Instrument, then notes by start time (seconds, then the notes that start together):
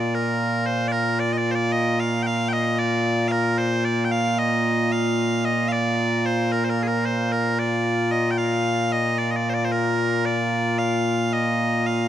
bagpipes
Already playing: A#2 A#3 F4 D5
0.15 A#4
0.66 C5
0.88 D5
0.92 A#4
1.20 D5
1.33 D#5
1.38 D5
1.51 C5 D5
1.72 D#5
2.00 F5
2.23 F5 G5
2.49 G5
2.53 D#5
2.79 D5
3.28 A#4 F5
3.58 C5
3.85 D5
4.05 G5
4.12 F5
4.38 D#5
4.92 F5
5.45 D#5
5.68 D5 F5
6.26 C5
6.52 A#4
6.65 C5
6.70 A#4
6.83 G#4
6.87 A#4
7.06 C5
7.32 A#4
7.59 D5
8.12 D#5
8.31 G5
8.38 F5
8.92 D#5
9.18 D5
9.31 D#5
9.36 D5
9.49 C5
9.54 D5
9.65 C5
9.72 A#4
10.25 D5
10.78 F5
11.33 D#5
11.86 F5